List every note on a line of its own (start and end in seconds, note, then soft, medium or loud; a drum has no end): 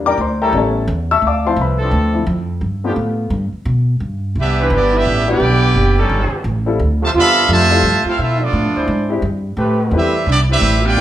0.00 0.17 E2 medium
0.06 0.15 G3 medium
0.06 0.15 D4 medium
0.06 0.15 E4 medium
0.06 0.15 A#4 loud
0.06 0.19 D5 medium
0.06 0.19 G5 medium
0.06 0.19 A#5 medium
0.06 0.19 D6 loud
0.17 0.52 D2 medium
0.17 0.41 C5 medium
0.17 0.41 C6 medium
0.41 0.86 G3 loud
0.41 0.86 C#4 loud
0.41 0.86 E4 medium
0.41 0.86 A4 loud
0.41 0.54 A#4 medium
0.41 0.54 E5 medium
0.41 0.54 G5 medium
0.41 0.54 A#5 medium
0.53 0.87 A1 medium
0.53 0.80 G3 soft
0.53 0.80 B3 soft
0.53 0.80 C#4 medium
0.57 0.88 A4 medium
0.57 0.88 C#5 medium
0.57 0.88 E5 medium
0.57 0.88 A5 medium
0.88 1.21 E2 loud
1.11 1.24 E5 medium
1.11 1.24 A5 medium
1.11 1.24 C#6 medium
1.11 1.23 E6 loud
1.22 1.56 D2 medium
1.27 1.47 D5 medium
1.27 1.45 F5 medium
1.27 1.46 A5 medium
1.27 1.46 D6 medium
1.45 2.12 F3 medium
1.45 2.12 C4 soft
1.45 2.13 E4 medium
1.45 1.59 C5 medium
1.45 1.59 F5 medium
1.45 1.59 A5 medium
1.45 1.59 C6 medium
1.56 1.91 C2 medium
1.61 1.92 B4 medium
1.61 1.92 B5 medium
1.78 2.24 F3 loud
1.78 2.25 C4 loud
1.78 2.25 D4 loud
1.78 2.24 A4 loud
1.91 2.26 D2 loud
2.13 2.26 F3 soft
2.13 2.26 C4 soft
2.13 2.26 E4 medium
2.27 2.60 F2 loud
2.61 2.95 G2 medium
2.84 2.93 F3 medium
2.84 3.30 A3 medium
2.84 2.93 B3 medium
2.84 3.30 B3 medium
2.84 2.93 D4 medium
2.84 3.30 F4 medium
2.84 2.93 G4 loud
2.96 3.30 A2 medium
3.30 3.51 G2 loud
3.52 muted upright bass stroke soft
3.65 4.00 B2 loud
4.00 4.35 G2 medium
4.35 4.70 C2 medium
4.35 4.70 G3 medium
4.35 4.70 B3 medium
4.35 4.70 E4 medium
4.40 4.71 D4 medium
4.40 4.71 G4 medium
4.40 4.71 B4 medium
4.40 4.71 E5 loud
4.58 5.03 E3 loud
4.58 5.03 C4 loud
4.58 5.03 D4 loud
4.58 5.03 B4 loud
4.70 5.04 G1 loud
4.70 4.92 G3 medium
4.70 4.92 B3 medium
4.70 4.94 D4 medium
4.75 4.95 B3 medium
4.75 4.95 E4 medium
4.75 4.95 G4 medium
4.75 4.95 D5 medium
4.93 5.28 G3 medium
4.93 5.27 B3 medium
4.93 5.29 D4 loud
4.93 5.28 E4 loud
4.93 5.30 G4 medium
4.93 5.29 B4 medium
4.93 5.30 E5 loud
5.05 5.39 A1 loud
5.28 5.39 G3 medium
5.28 6.06 B3 medium
5.28 6.06 D4 medium
5.28 5.39 D4 medium
5.28 5.40 E4 medium
5.28 6.08 E4 medium
5.28 5.40 F#4 medium
5.28 6.28 G4 medium
5.28 5.40 B4 medium
5.28 6.07 B4 medium
5.28 6.07 D5 loud
5.28 6.29 G5 loud
5.40 5.74 B1 loud
5.75 6.09 F#1 medium
5.98 6.43 G3 loud
5.98 6.43 C#4 loud
5.98 6.43 D#4 loud
5.98 6.42 A4 loud
6.09 6.30 G1 loud
6.31 muted upright bass stroke soft
6.44 6.78 A1 loud
6.66 6.78 G3 medium
6.66 6.78 C4 medium
6.66 6.78 E4 medium
6.66 6.78 F4 medium
6.66 6.78 A4 medium
6.79 7.13 D2 loud
7.01 7.07 C3 medium
7.01 7.08 F3 medium
7.01 7.07 A3 medium
7.01 7.10 F4 medium
7.01 7.10 C5 medium
7.01 7.10 E5 medium
7.01 7.10 A5 loud
7.14 7.48 E2 medium
7.14 7.47 C3 medium
7.14 7.68 G3 loud
7.14 7.47 B3 medium
7.14 7.68 D4 loud
7.14 7.47 F4 loud
7.14 7.67 F4 medium
7.14 7.48 A4 loud
7.14 7.67 D5 loud
7.14 7.48 E5 loud
7.14 7.49 F5 loud
7.14 7.49 B5 loud
7.48 7.82 F2 loud
7.48 8.02 C3 loud
7.48 8.01 F3 medium
7.48 8.01 A3 medium
7.48 8.03 F4 loud
7.48 8.03 C5 loud
7.48 8.03 E5 loud
7.48 8.03 A5 loud
7.70 7.82 G3 medium
7.70 7.82 C4 medium
7.70 7.82 E4 medium
7.70 7.83 F4 medium
7.70 7.83 A4 medium
7.83 8.04 G2 loud
8.05 8.17 A3 medium
8.05 8.18 C4 medium
8.05 8.17 F4 medium
8.05 8.19 F5 loud
8.05 muted upright bass stroke soft
8.09 8.19 C4 medium
8.09 8.19 E4 medium
8.09 8.19 A4 medium
8.19 8.52 B2 medium
8.19 8.42 C4 medium
8.19 8.40 E4 medium
8.19 8.42 F4 medium
8.19 8.41 A4 medium
8.19 8.42 E5 loud
8.40 8.88 F3 medium
8.40 8.88 A3 medium
8.40 8.89 B3 medium
8.40 9.10 D4 medium
8.40 8.89 F4 medium
8.40 8.89 A4 medium
8.40 9.11 D5 medium
8.53 8.66 A2 medium
8.64 8.76 F2 medium
8.75 8.87 D2 medium
8.75 9.20 G#3 loud
8.75 9.20 D4 medium
8.75 9.20 E4 medium
8.75 9.20 C5 loud
8.88 9.21 G#2 medium
9.10 9.21 G#3 medium
9.10 9.22 C4 medium
9.10 9.22 D4 medium
9.10 9.22 E4 medium
9.10 9.22 G4 medium
9.22 9.56 G2 loud
9.57 9.91 A2 medium
9.57 10.10 A3 loud
9.57 10.09 C4 loud
9.57 10.09 G4 loud
9.57 10.09 B4 loud
9.91 10.25 E2 medium
9.91 10.25 G3 medium
9.91 10.12 A3 medium
9.91 10.12 C4 medium
9.91 10.25 C4 medium
9.91 10.12 E4 medium
9.91 10.26 E4 medium
9.91 10.12 G4 medium
9.91 10.12 B4 medium
9.96 10.27 C4 medium
9.96 10.27 G4 medium
9.96 10.27 B4 medium
9.96 10.27 E5 loud
10.26 10.60 C2 medium
10.26 10.39 B3 medium
10.26 10.38 D4 medium
10.26 10.39 E4 medium
10.26 10.39 D5 medium
10.30 10.39 G4 medium
10.49 10.81 G3 medium
10.49 10.82 C4 medium
10.49 10.82 E4 medium
10.49 10.83 G4 loud
10.49 10.82 B4 medium
10.49 10.83 E5 loud
10.61 10.95 A1 loud
10.83 11.01 B3 medium
10.83 11.01 D4 medium
10.83 11.01 F4 loud
10.83 11.01 G4 medium
10.83 11.01 B4 medium
10.83 11.01 D5 loud
10.83 11.01 G5 loud
10.95 11.01 G1 medium
10.95 11.01 A3 medium
10.95 11.01 D4 medium
10.95 11.01 E4 medium
10.95 11.01 F4 medium
10.95 11.01 B4 medium